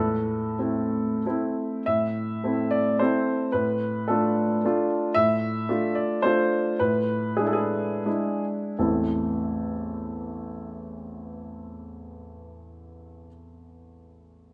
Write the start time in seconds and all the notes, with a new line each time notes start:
Already playing: A2 A4
0.59 A3 C4 E4
1.26 A3 C4 E4
1.86 A2 E5
2.44 A3 C4 E4
2.71 D5
2.99 A3 C4 E4 C5
3.52 A2 B4
4.08 A3 D4 F4 A4
4.65 A3 D4 F4
5.14 A2 E5
5.69 A3 D4 F4
5.95 D5
6.22 A3 D4 F4 C5
6.79 A2 B4
7.37 G#3 D4 E4 G#4
7.47 A4
7.53 G#4
8.05 G#3 D4 E4
8.79 A1 E2 E3 A3 C4 E4 A4